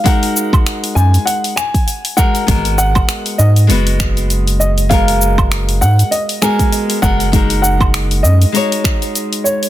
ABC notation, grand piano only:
X:1
M:4/4
L:1/8
Q:"Swing 16ths" 1/4=99
K:G#dor
V:1 name="Grand piano"
f3 g f g2 f- | f f2 d4 d | e3 f d g2 f- | f f2 d4 c |]